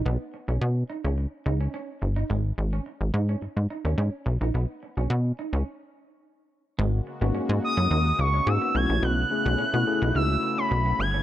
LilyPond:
<<
  \new Staff \with { instrumentName = "Analog synth lead" } { \time 4/4 \key b \mixolydian \tempo 4 = 107 r1 | r1 | r1 | r4. dis'''4 cis'''8 e'''8 gis'''8 |
fis'''2 e'''8. b''8. gis'''8 | }
  \new Staff \with { instrumentName = "Tine electric piano" } { \time 4/4 \key b \mixolydian r1 | r1 | r1 | r8. <ais cis' dis' fis'>4. r8. <ais cis' dis' fis'>8 <a cis' e' fis'>8~ |
<a cis' e' fis'>16 r16 <a cis' e' gis'>8 r16 <a cis' e' fis'>16 <a cis' e' gis'>8 <a cis' e' fis'>4. r8 | }
  \new Staff \with { instrumentName = "Clean electric guitar" } { \time 4/4 \key b \mixolydian b16 r8 cis'16 r8 dis'16 cis'16 r8 dis'16 cis'16 cis'16 r8 dis'16 | gis16 r8 cis'16 r8 dis'16 cis'16 r8 dis'16 cis'16 cis'16 r8 dis'16 | b16 r8 cis'16 r8 dis'16 cis'16 r2 | gis16 r8 b16 cis'16 r8 dis'16 dis'16 r8 cis'16 r16 b16 r16 cis'16 |
b16 r8 cis'16 cis'16 r8 dis'16 dis'16 r8 cis'16 r16 b16 r16 cis'16 | }
  \new Staff \with { instrumentName = "Analog synth pad" } { \time 4/4 \key b \mixolydian << { r1 | r1 | r1 | <gis ais fis'>2.~ <gis ais fis'>8 <a b e'>8~ |
<a b e'>1 | } \\ { r1 | r1 | r1 | cis1~ |
cis1 | } >> }
  \new Staff \with { instrumentName = "Analog synth bass" } { \clef bass \time 4/4 \key b \mixolydian b,,16 r8 b,,16 b,8 r16 cis,8 r16 cis,8 r8 g,,8 | gis,,8 gis,,8 r16 gis,,16 gis,8 gis,16 gis,16 r16 dis,16 gis,16 r16 b,,16 ais,,16 | b,,16 r8 b,,16 b,8 r16 cis,16 r2 | gis,,8 r16 gis,,16 gis,16 gis,16 r16 fis,16 dis,8 cis,8 gis,16 r16 b,,16 ais,,16 |
b,,8 r16 b,,16 b,16 b,16 r16 b,,16 cis,8 r8 b,,8 g,,8 | }
>>